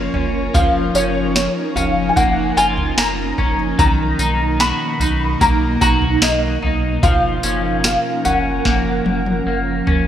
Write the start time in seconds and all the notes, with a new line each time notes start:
Already playing: F3 A#3 C#4 F4 A#4 C#5
0.14 F#1 C#4, floor tom
0.54 F#1 F3 D#4 F5, kick, floor tom, tambourine
0.94 F#1 C#4 C#5, tambourine
1.36 C#5, snare, tambourine
1.76 F#1 C#4 F5, floor tom, tambourine
2.09 G#5
2.16 F#1 A#3 F#5, kick, floor tom, tambourine
2.57 F#1 F4 G#5, tambourine
2.78 floor tom
2.97 F#1 A#3 A#5, snare, tambourine
3.38 F#1 C#4, kick, floor tom
3.78 B1 B2 D#3 A#3 D#4 A#5, kick, floor tom, tambourine
4.19 B1 D#4, tambourine
4.60 F#4 B5, snare, tambourine
5.00 B1 D#4, floor tom, tambourine
5.41 B1 A#3 A#5, kick, floor tom, tambourine
5.81 B1 F#4 A#5, kick, tambourine
6.02 floor tom
6.22 B1 A#3 D#5, snare, tambourine
6.62 B1 D#4, floor tom
7.03 F#1 F3 C#4 A#4 F5, kick, floor tom, tambourine
7.43 F#1 C#4, tambourine
7.84 F5, snare, tambourine
8.25 F#1 C#4 F#5, floor tom, tambourine
8.65 F#1 A#3, kick, snare
9.06 F#1, high tom
9.26 high tom
9.46 F#1 A#3
9.87 F#1 C#4, floor tom